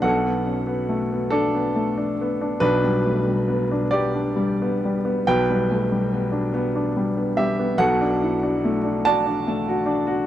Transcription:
X:1
M:6/8
L:1/16
Q:3/8=47
K:Glyd
V:1 name="Grand piano"
[Af]6 [DA]6 | [DB]6 [Gd]6 | [Bg]6 z4 [Ge]2 | [Af]6 [da]6 |]
V:2 name="Grand piano"
[B,,,B,,D] B, C B, A, B,2 B, A, D B, D | [B,,,B,,] G, A, G, B, D B, D G, B, G, B, | [B,,,B,,] G, A, G, B, D B, D G, B, G, B, | [B,,,B,,] D E D A, D F D A, F D F |]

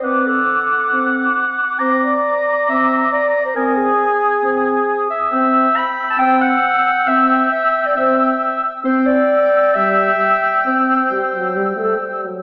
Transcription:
X:1
M:4/4
L:1/16
Q:1/4=136
K:Clyd
V:1 name="Flute section"
d'16- | d'16 | _e'16 | e'16- |
e'16 | e'16- | e'12- e'2 z2 |]
V:2 name="Oboe"
f16 | _b16 | _a12- a2 z2 | g16- |
g16 | g16- | g12- g2 z2 |]
V:3 name="Clarinet"
B2 A12 z2 | c2 d6 e4 d3 c | _B2 _A12 e2- | e4 b3 a g2 f6 |
e4 e3 d e6 z2 | c2 d6 e8 | c12- c2 z2 |]
V:4 name="French horn section"
C4 z4 C4 z4 | C4 z4 C4 z4 | C4 z4 C4 z4 | C4 z4 C4 z4 |
C4 z4 C4 z4 | C4 z4 G,4 z4 | C4 G,2 F,2 G,2 A,2 G,2 F,2 |]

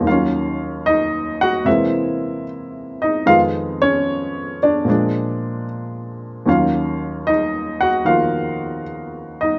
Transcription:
X:1
M:4/4
L:1/8
Q:"Swing" 1/4=75
K:Ebm
V:1 name="Grand piano"
[Ff]2 [Ee] [Gg] [=E=e]2 z [^D^d] | [Ff] [Dd]2 [=D=d]3 z2 | [Ff]2 [Ee] [Gg] [Ff]2 z [Ee] |]
V:2 name="Grand piano" clef=bass
[E,,E,G,D]4 [=C,=E,^G,B,=C]4 | [F,,E,A,C]4 [B,,F,A,=D]4 | [E,,E,G,D]4 [E,F,B,]4 |]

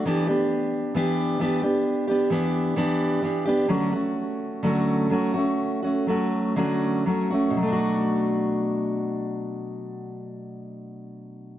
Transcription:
X:1
M:4/4
L:1/16
Q:1/4=62
K:Bm
V:1 name="Steel-string acoustic guitar"
[E,B,DG] [B,DG]3 [E,B,DG]2 [E,B,DG] [B,DG]2 [B,DG] [E,B,DG]2 [E,B,DG]2 [E,B,DG] [B,DG] | [D,F,A,CF] [A,CF]3 [D,F,A,CF]2 [F,A,CF] [A,CF]2 [A,CF] [F,A,CF]2 [D,F,A,CF]2 [F,A,CF] [A,CF] | [B,,F,A,DF]16 |]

